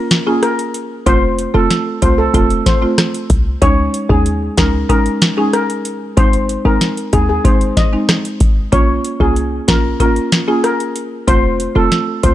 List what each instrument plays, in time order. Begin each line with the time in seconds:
Already playing: marimba A#3 C#4 F4
0.11 snare, closed hi-hat
0.26 marimba A#3 C#4 F4, steel pan G#4
0.43 steel pan A#4, cross-stick, closed hi-hat
0.59 closed hi-hat
0.74 closed hi-hat
1.06 808-style bass F1, marimba A3 C4 F4, steel pan C5, kick, closed hi-hat
1.39 closed hi-hat
1.54 808-style bass F1, marimba A3 C4 F4, steel pan A4
1.70 snare, closed hi-hat
2.02 808-style bass C2, marimba A3 C4 F4, steel pan C5, kick, closed hi-hat
2.18 steel pan A4
2.34 808-style bass F1, marimba A3 C4 F4, steel pan A4, kick, closed hi-hat
2.50 closed hi-hat
2.66 steel pan C5, kick, snare, closed hi-hat
2.82 marimba A3 C4 F4
2.98 cross-stick, snare, closed hi-hat
3.14 closed hi-hat
3.30 808-style bass C2, kick, closed hi-hat
3.62 808-style bass C#2, marimba G#3 C#4 D#4, steel pan C#5, kick, closed hi-hat
3.94 closed hi-hat
4.09 808-style bass D#2, marimba G#3 C#4 D#4, steel pan G#4, kick
4.26 closed hi-hat
4.57 808-style bass C#2, marimba G#3 C#4 D#4, steel pan A#4, kick, snare, closed hi-hat
4.89 marimba G#3 C#4 D#4, steel pan A#4, kick, closed hi-hat
5.06 closed hi-hat
5.22 snare, closed hi-hat
5.37 marimba G#3 C#4 D#4, steel pan G#4
5.53 steel pan A#4, cross-stick, closed hi-hat
5.70 closed hi-hat
5.85 closed hi-hat
6.17 808-style bass G#1, marimba G#3 C4 D#4, steel pan C5, kick, closed hi-hat
6.33 closed hi-hat
6.49 closed hi-hat
6.65 808-style bass G#1, marimba G#3 C4 D#4, steel pan A#4
6.81 snare, closed hi-hat
6.97 closed hi-hat
7.13 808-style bass D#2, marimba G#3 C4 D#4, steel pan G#4, kick, closed hi-hat
7.29 steel pan G#4
7.45 808-style bass G#1, marimba G#3 C4 D#4, steel pan C5, kick, closed hi-hat
7.61 closed hi-hat
7.77 steel pan D#5, kick, snare, closed hi-hat
7.93 marimba G#3 C4 D#4
8.09 cross-stick, snare, closed hi-hat
8.25 closed hi-hat
8.40 808-style bass G#1, kick, closed hi-hat
8.72 808-style bass A#1, marimba A#3 C#4 F4, steel pan C#5, kick, closed hi-hat
9.04 closed hi-hat
9.20 808-style bass C2, marimba A#3 C#4 F4, steel pan G#4, kick
9.36 closed hi-hat
9.68 808-style bass A#1, marimba A#3 C#4 F4, steel pan A#4, kick, snare, closed hi-hat
10.00 marimba A#3 C#4 F4, steel pan A#4, kick, closed hi-hat
10.16 closed hi-hat
10.32 snare, closed hi-hat
10.48 marimba A#3 C#4 F4, steel pan G#4
10.64 steel pan A#4, cross-stick, closed hi-hat
10.80 closed hi-hat
10.96 closed hi-hat
11.27 808-style bass F1, marimba A3 C4 F4, steel pan C5, kick, closed hi-hat
11.60 closed hi-hat
11.75 808-style bass F1, marimba A3 C4 F4, steel pan A4
11.92 snare, closed hi-hat
12.23 808-style bass C2, marimba A3 C4 F4, steel pan C5, kick, closed hi-hat